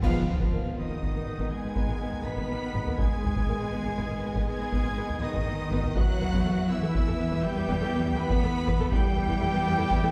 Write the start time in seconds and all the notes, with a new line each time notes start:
0.02 G#1 G#2 D#3 F3 B3 F4 G#4 B4 D#5 F5 F6, concert bass drum, taiko, crash, impact
0.27 G#1 B3 B4, taiko low
0.40 G#1 B3 B4, taiko
0.52 G#1 A#3 A#4
0.63 G#1 B3 B4
0.76 G#1 D#3 B3 D#4 B4 D#5 D#6
0.90 G#1 A#3 A#4
1.02 G#1 B3 B4, taiko
1.15 G#1 A#3 A#4
1.26 G#1 B3 B4
1.38 G#1 B3 B4, taiko
1.51 G#3 G#4 G#5 G#6
1.63 G#1 B3 B4
1.76 G#1 B3 B4, taiko
1.88 G#1 A#3 A#4
2.00 G#1 B3 B4
2.13 taiko low
2.24 G#1 B3 B4 B5 B6
2.37 G#1 B3 B4, taiko
2.49 G#1 A#3 A#4
2.74 G#1 B3 B4, taiko
2.86 G#1 A#3 A#4, taiko low
2.98 G#1 D#3 G#3 B3 G#4 B4 D#5 G#5 G#6, taiko
3.24 G#1 B3 B4, taiko low
3.36 G#1 B3 B4, taiko
3.48 G#1 A#3 A#4
3.59 G#1 B3 B4
3.71 G#1 B3 B4
3.83 G#1 A#3 A#4
3.97 G#1 B3 B4, taiko
4.09 G#1 A#3 A#4
4.22 G#1 B3 B4
4.34 G#1 B3 B4, taiko
4.46 G#3 G#4 G#5 G#6
4.59 G#1 B3 B4
4.72 G#1 B3 B4, taiko
4.84 G#1 A#3 A#4
4.97 G#1 B3 B4
5.09 taiko low
5.21 G#1 D#3 B3 D#4 B4 D#5 D#6
5.33 G#1 B3 B4, taiko
5.46 G#1 A#3 A#4
5.71 G#1 B3 B4, taiko
5.82 G#1 A#3 A#4, taiko low
5.94 E2 E3 F#3 B3 E4 F#4 B4 E5 F#5 F#6, taiko
6.20 E2 B3 B4, taiko low
6.32 E2 B3 B4, taiko
6.44 E2 A3 A4
6.57 E2 B3 B4
6.69 E2 E3 B3 E4 B4 E5 E6
6.82 E2 A3 A4
6.93 E2 B3 B4, taiko
7.07 E2 A3 A4
7.19 E2 B3 B4
7.31 E2 B3 B4, taiko
7.43 G3 G4 G5 G6
7.55 E2 B3 B4
7.68 E2 B3 B4, taiko
7.80 E2 A3 A4
7.92 E2 B3 B4
8.06 taiko low
8.17 E2 B3 B4 B5 B6
8.29 E2 B3 B4, taiko
8.42 E2 A3 A4
8.66 E2 B3 B4, taiko
8.79 E2 A3 A4, taiko low
8.91 E2 E3 G3 B3 E4 G4 B4 E5 G5 G6, taiko
9.16 E2 B3 B4, taiko low
9.28 E2 B3 B4, taiko
9.41 E2 A3 A4
9.53 E2 B3 B4
9.65 E2 B3 B4
9.78 E2 A3 A4
9.90 E2 B3 B4, taiko
10.02 E2 A3 A4